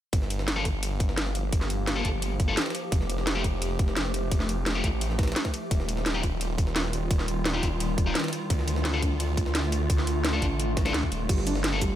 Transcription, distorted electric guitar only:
0.56 0.63 A#3 medium
0.56 0.63 F4 medium
0.56 0.63 A4 medium
1.96 2.07 A#3 medium
1.96 2.07 F4 medium
1.96 2.07 A4 loud
2.48 2.55 A#3 medium
2.48 2.55 F4 medium
2.48 2.55 A4 loud
3.35 3.42 A3 medium
3.35 3.42 F4 medium
3.35 3.42 G4 medium
4.75 4.86 A3 medium
4.75 4.86 F4 medium
4.75 4.86 G4 loud
6.14 6.21 D#4 medium
6.14 6.21 F4 medium
6.14 6.21 G4 medium
7.54 7.65 D#4 medium
7.54 7.65 F4 medium
7.54 7.65 G4 loud
8.06 8.13 D#4 medium
8.06 8.13 F4 medium
8.06 8.13 G4 medium
8.94 9.00 D4 medium
8.94 9.00 F4 medium
8.94 9.00 A4 loud
10.33 10.44 D4 medium
10.33 10.44 F4 medium
10.33 10.44 A4 loud
10.85 10.92 D4 medium
10.85 10.92 F4 medium
10.85 10.92 A4 medium
11.73 11.79 A#3 medium
11.73 11.79 F4 medium
11.73 11.79 A4 loud

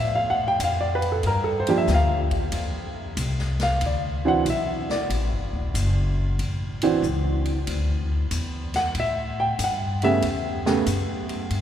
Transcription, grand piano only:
0.00 0.18 E5 medium
0.15 0.37 F5 medium
0.30 0.45 F#5 medium
0.48 0.59 G5 loud
0.64 0.83 F5 medium
0.81 1.02 D5 medium
0.95 1.10 B4 medium
1.12 1.23 A4 medium
1.27 1.47 A#4 medium
1.44 1.66 A4 medium
1.60 1.74 C5 medium
1.68 1.87 F3 medium
1.68 1.87 A#3 medium
1.68 1.88 D4 medium
1.68 1.88 G4 medium
1.78 1.88 E5 medium
1.94 2.19 F5 medium
3.63 3.83 F5 medium
3.86 4.26 D5 medium
4.25 4.44 E3 medium
4.25 4.45 C4 medium
4.25 4.45 D4 medium
4.25 4.45 F#4 medium
4.25 4.47 F#5 medium
4.50 4.90 E5 medium
4.91 5.11 D5 medium
6.83 7.02 E3 medium
6.83 7.02 C4 medium
6.83 7.02 D4 medium
6.83 7.02 F#4 medium
8.76 8.96 F#5 medium
9.00 9.39 E5 medium
9.40 9.60 G5 medium
9.64 10.03 F#5 medium
10.03 10.22 C#3 medium
10.03 10.22 A3 medium
10.03 10.22 B3 medium
10.03 10.22 G4 medium
10.03 10.24 E5 loud
10.66 10.85 C#3 medium
10.66 10.85 A3 medium
10.66 10.85 B3 medium
10.66 10.85 G4 medium

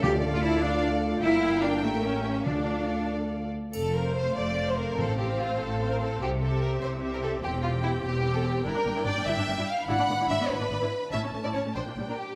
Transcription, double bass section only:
0.03 1.20 D2 medium
1.22 1.82 G1 medium
1.83 2.46 A1 soft
2.47 3.51 D2 soft
3.74 4.30 F1 soft
4.37 4.91 F1 medium
4.98 5.53 A1 soft
5.60 6.14 A1 medium
6.21 6.75 C2 medium
6.81 7.35 C2 medium
7.42 7.96 E1 medium
8.03 8.57 E1 medium
8.64 8.69 G1 medium
8.85 8.89 G1 soft
9.05 9.10 G1 soft
9.26 9.31 G1 medium
9.47 9.51 G1 soft
9.88 9.92 G#1 medium
10.09 10.13 G#1 soft
10.29 10.33 G#1 soft
10.50 10.54 G#1 medium
10.70 10.74 G#1 soft
11.12 11.16 A1 soft
11.33 11.37 A1 soft
11.54 11.59 A1 soft
11.76 11.80 A#1 medium
11.97 12.02 A#1 soft

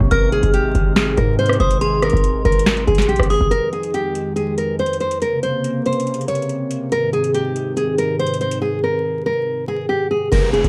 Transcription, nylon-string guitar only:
0.11 0.28 A#4 loud
0.32 0.49 G#4 medium
0.54 0.94 G4 medium
0.96 1.13 G#4 medium
1.18 1.34 A#4 medium
1.39 1.56 C5 medium
1.60 1.77 C5 medium
1.81 1.98 G#4 medium
2.03 2.43 A#4 medium
2.45 2.85 A#4 medium
2.87 3.04 G#4 medium
3.08 3.26 G4 medium
3.30 3.47 G#4 medium
3.51 3.68 A#4 loud
3.73 3.90 G#4 medium
3.94 4.34 G4 medium
4.36 4.53 G#4 medium
4.58 4.75 A#4 medium
4.79 4.96 C5 medium
5.01 5.17 C5 medium
5.22 5.39 A#4 medium
5.43 5.83 C5 medium
5.86 6.26 C5 medium
6.28 6.88 C#5 medium
6.92 7.09 A#4 loud
7.13 7.30 G#4 medium
7.34 7.74 G4 medium
7.77 7.94 G#4 medium
7.98 8.15 A#4 medium
8.19 8.36 C5 medium
8.41 8.58 C5 medium
8.62 8.79 G#4 medium
8.84 9.23 A#4 medium
9.26 9.66 A#4 medium
9.68 9.85 G#4 medium
9.89 10.06 G4 medium
10.11 10.28 G#4 medium
10.32 10.49 A#4 loud
10.53 10.69 G#4 medium

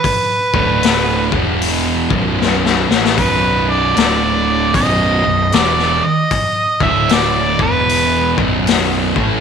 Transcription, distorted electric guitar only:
0.54 1.31 D2 medium
0.54 1.31 A2 medium
0.54 1.32 D3 medium
1.32 2.09 E2 medium
1.32 2.10 B2 medium
1.32 2.10 E3 medium
2.11 2.88 B1 medium
2.11 2.88 F#2 medium
2.11 2.88 B2 medium
2.89 3.17 A2 medium
2.89 3.18 E3 medium
2.89 3.18 A3 medium
3.18 3.96 B1 medium
3.18 3.96 F#2 medium
3.18 3.96 B2 medium
3.97 4.74 D2 medium
3.97 4.75 A2 medium
3.97 4.75 D3 medium
4.75 5.23 B1 medium
4.75 5.23 F#2 loud
4.75 5.24 B2 medium
5.24 5.47 B1 medium
5.24 5.48 F#2 medium
5.54 6.02 E2 medium
5.54 6.02 B2 medium
5.54 6.02 E3 medium
6.81 7.59 D2 medium
6.81 7.59 A2 medium
6.81 7.60 D3 medium
7.59 8.36 E2 medium
7.59 8.36 B2 medium
7.59 8.36 E3 medium
8.38 9.14 B1 medium
8.38 9.15 F#2 medium
8.38 9.15 B2 medium
9.16 9.40 A2 medium
9.16 9.40 E3 medium
9.16 9.40 A3 medium

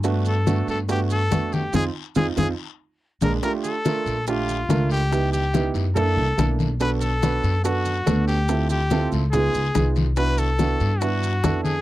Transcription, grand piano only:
0.04 0.34 A3 medium
0.04 0.34 B3 medium
0.04 0.34 D4 medium
0.04 0.34 F#4 medium
0.47 0.76 A3 medium
0.47 0.76 B3 medium
0.47 0.76 D4 medium
0.47 0.76 F#4 medium
0.89 1.18 A3 medium
0.89 1.18 B3 medium
0.89 1.18 D4 medium
0.89 1.19 F#4 medium
1.31 1.61 A3 medium
1.31 1.61 B3 medium
1.31 1.61 D4 medium
1.31 1.61 F#4 medium
1.73 1.87 C4 medium
1.73 1.87 D#4 medium
1.73 1.87 F4 medium
2.16 2.29 C4 medium
2.16 2.29 D#4 medium
2.16 2.29 F4 medium
2.36 2.50 C4 medium
2.36 2.50 D#4 medium
2.36 2.50 F4 medium
3.22 3.35 G#3 medium
3.22 3.35 A#3 medium
3.22 3.36 D4 medium
3.42 3.72 A3 medium
3.42 3.72 D4 medium
3.42 3.73 F4 medium
3.42 3.73 G4 medium
3.85 4.15 A3 medium
3.85 4.15 D4 medium
3.85 4.15 F4 medium
3.85 4.15 A#4 medium
4.28 4.57 A3 medium
4.28 4.57 D4 medium
4.28 4.57 F4 medium
4.28 4.57 G4 medium
4.69 4.99 A3 medium
4.69 4.99 D4 medium
4.69 4.99 F4 medium
4.69 4.99 A#4 medium
5.11 5.41 B3 medium
5.11 5.41 D#4 medium
5.11 5.41 E4 medium
5.11 5.41 G4 medium
5.54 5.83 B3 medium
5.54 5.83 D#4 medium
5.54 5.83 E4 medium
5.54 5.84 G4 medium
5.95 6.25 A#3 medium
5.95 6.25 D4 medium
5.95 6.25 E4 medium
5.95 6.25 A4 medium
6.38 6.67 A#3 medium
6.38 6.68 D4 medium
6.38 6.68 E4 medium
6.38 6.68 A4 medium
6.80 7.10 B3 medium
6.80 7.10 D4 medium
6.80 7.10 F#4 medium
6.80 7.10 A4 medium
7.22 7.52 B3 medium
7.22 7.52 D4 medium
7.22 7.52 F#4 medium
7.22 7.52 B4 medium
7.64 7.94 B3 medium
7.64 7.94 D4 medium
7.64 7.94 F#4 medium
7.64 7.94 A4 medium
8.06 8.36 B3 medium
8.06 8.36 D4 medium
8.06 8.36 F#4 medium
8.06 8.36 A4 medium
8.49 8.78 C4 medium
8.49 8.79 E4 medium
8.49 8.79 F4 medium
8.49 8.78 A4 medium
8.92 9.21 C4 medium
8.92 9.21 E4 medium
8.92 9.21 F4 medium
8.92 9.21 A4 medium
9.34 9.63 B3 medium
9.34 9.63 D#4 medium
9.34 9.63 F4 medium
9.34 9.63 G#4 medium
9.75 10.04 B3 medium
9.75 10.04 D#4 medium
9.75 10.05 F4 medium
9.75 10.05 G#4 medium
10.17 10.47 B3 medium
10.17 10.47 D4 medium
10.17 10.47 E4 medium
10.17 10.47 F#4 medium
10.60 10.89 B3 medium
10.60 10.89 D4 medium
10.60 10.89 E4 medium
10.60 10.89 F#4 medium
11.01 11.31 B3 medium
11.01 11.31 D4 medium
11.01 11.31 E4 medium
11.01 11.31 F#4 medium
11.44 11.73 B3 medium
11.44 11.73 D4 medium
11.44 11.73 E4 medium
11.44 11.73 A4 medium

